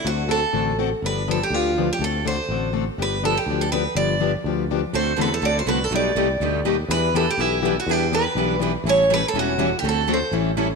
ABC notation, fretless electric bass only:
X:1
M:4/4
L:1/8
Q:"Swing" 1/4=245
K:Dmix
V:1 name="Fretless electric bass" clef=bass
D,,4 A,,,4 | G,,,4 D,,4 | D,,4 A,,,4 | G,,,4 D,,4 |
G,,,4 D,,4 | D,,2 E,,2 D,,2 C,,2 | B,,,2 C,,2 D,,2 ^D,,2 | E,,4 B,,,4 |
E,,4 B,,,4 | A,,,4 E,,,4 | D,,4 A,,,4 |]